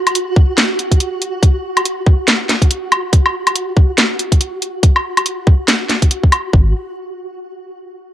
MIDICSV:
0, 0, Header, 1, 4, 480
1, 0, Start_track
1, 0, Tempo, 425532
1, 1612, Time_signature, 4, 2, 24, 8
1, 9177, End_track
2, 0, Start_track
2, 0, Title_t, "Synth texture"
2, 0, Program_c, 0, 99
2, 0, Note_on_c, 0, 66, 75
2, 7384, Note_off_c, 0, 66, 0
2, 9177, End_track
3, 0, Start_track
3, 0, Title_t, "Sub bass"
3, 0, Program_c, 1, 38
3, 7371, Note_on_c, 1, 32, 96
3, 7595, Note_off_c, 1, 32, 0
3, 9177, End_track
4, 0, Start_track
4, 0, Title_t, "Drums"
4, 76, Note_on_c, 9, 42, 49
4, 76, Note_on_c, 9, 77, 58
4, 171, Note_off_c, 9, 42, 0
4, 171, Note_on_c, 9, 42, 80
4, 189, Note_off_c, 9, 77, 0
4, 284, Note_off_c, 9, 42, 0
4, 410, Note_on_c, 9, 36, 106
4, 522, Note_off_c, 9, 36, 0
4, 652, Note_on_c, 9, 38, 115
4, 652, Note_on_c, 9, 42, 75
4, 765, Note_off_c, 9, 38, 0
4, 765, Note_off_c, 9, 42, 0
4, 892, Note_on_c, 9, 42, 50
4, 1005, Note_off_c, 9, 42, 0
4, 1032, Note_on_c, 9, 36, 60
4, 1034, Note_on_c, 9, 42, 50
4, 1131, Note_off_c, 9, 42, 0
4, 1131, Note_on_c, 9, 42, 75
4, 1145, Note_off_c, 9, 36, 0
4, 1244, Note_off_c, 9, 42, 0
4, 1372, Note_on_c, 9, 42, 46
4, 1485, Note_off_c, 9, 42, 0
4, 1609, Note_on_c, 9, 36, 113
4, 1612, Note_on_c, 9, 42, 72
4, 1722, Note_off_c, 9, 36, 0
4, 1725, Note_off_c, 9, 42, 0
4, 1995, Note_on_c, 9, 42, 50
4, 1995, Note_on_c, 9, 77, 59
4, 2092, Note_off_c, 9, 42, 0
4, 2092, Note_on_c, 9, 42, 77
4, 2107, Note_off_c, 9, 77, 0
4, 2205, Note_off_c, 9, 42, 0
4, 2329, Note_on_c, 9, 36, 100
4, 2442, Note_off_c, 9, 36, 0
4, 2571, Note_on_c, 9, 38, 114
4, 2571, Note_on_c, 9, 42, 70
4, 2684, Note_off_c, 9, 38, 0
4, 2684, Note_off_c, 9, 42, 0
4, 2813, Note_on_c, 9, 38, 62
4, 2813, Note_on_c, 9, 42, 51
4, 2925, Note_off_c, 9, 38, 0
4, 2925, Note_off_c, 9, 42, 0
4, 2952, Note_on_c, 9, 36, 57
4, 2955, Note_on_c, 9, 42, 51
4, 3053, Note_off_c, 9, 42, 0
4, 3053, Note_on_c, 9, 42, 78
4, 3065, Note_off_c, 9, 36, 0
4, 3166, Note_off_c, 9, 42, 0
4, 3292, Note_on_c, 9, 42, 50
4, 3292, Note_on_c, 9, 77, 78
4, 3405, Note_off_c, 9, 42, 0
4, 3405, Note_off_c, 9, 77, 0
4, 3529, Note_on_c, 9, 36, 104
4, 3530, Note_on_c, 9, 42, 77
4, 3641, Note_off_c, 9, 36, 0
4, 3642, Note_off_c, 9, 42, 0
4, 3674, Note_on_c, 9, 77, 65
4, 3786, Note_off_c, 9, 77, 0
4, 3912, Note_on_c, 9, 42, 52
4, 3912, Note_on_c, 9, 77, 60
4, 4010, Note_off_c, 9, 42, 0
4, 4010, Note_on_c, 9, 42, 81
4, 4025, Note_off_c, 9, 77, 0
4, 4123, Note_off_c, 9, 42, 0
4, 4248, Note_on_c, 9, 36, 96
4, 4361, Note_off_c, 9, 36, 0
4, 4491, Note_on_c, 9, 38, 111
4, 4491, Note_on_c, 9, 42, 70
4, 4603, Note_off_c, 9, 38, 0
4, 4603, Note_off_c, 9, 42, 0
4, 4730, Note_on_c, 9, 42, 53
4, 4843, Note_off_c, 9, 42, 0
4, 4872, Note_on_c, 9, 36, 56
4, 4873, Note_on_c, 9, 42, 55
4, 4971, Note_off_c, 9, 42, 0
4, 4971, Note_on_c, 9, 42, 80
4, 4984, Note_off_c, 9, 36, 0
4, 5084, Note_off_c, 9, 42, 0
4, 5212, Note_on_c, 9, 42, 47
4, 5324, Note_off_c, 9, 42, 0
4, 5449, Note_on_c, 9, 36, 111
4, 5450, Note_on_c, 9, 42, 81
4, 5561, Note_off_c, 9, 36, 0
4, 5562, Note_off_c, 9, 42, 0
4, 5594, Note_on_c, 9, 77, 64
4, 5707, Note_off_c, 9, 77, 0
4, 5834, Note_on_c, 9, 42, 53
4, 5834, Note_on_c, 9, 77, 61
4, 5931, Note_off_c, 9, 42, 0
4, 5931, Note_on_c, 9, 42, 82
4, 5947, Note_off_c, 9, 77, 0
4, 6044, Note_off_c, 9, 42, 0
4, 6169, Note_on_c, 9, 36, 106
4, 6282, Note_off_c, 9, 36, 0
4, 6409, Note_on_c, 9, 38, 107
4, 6409, Note_on_c, 9, 42, 73
4, 6522, Note_off_c, 9, 38, 0
4, 6522, Note_off_c, 9, 42, 0
4, 6650, Note_on_c, 9, 38, 59
4, 6650, Note_on_c, 9, 42, 54
4, 6763, Note_off_c, 9, 38, 0
4, 6763, Note_off_c, 9, 42, 0
4, 6792, Note_on_c, 9, 36, 55
4, 6793, Note_on_c, 9, 42, 54
4, 6891, Note_off_c, 9, 42, 0
4, 6891, Note_on_c, 9, 42, 82
4, 6905, Note_off_c, 9, 36, 0
4, 7004, Note_off_c, 9, 42, 0
4, 7033, Note_on_c, 9, 36, 59
4, 7131, Note_on_c, 9, 42, 50
4, 7131, Note_on_c, 9, 77, 79
4, 7146, Note_off_c, 9, 36, 0
4, 7244, Note_off_c, 9, 42, 0
4, 7244, Note_off_c, 9, 77, 0
4, 7370, Note_on_c, 9, 36, 105
4, 7483, Note_off_c, 9, 36, 0
4, 9177, End_track
0, 0, End_of_file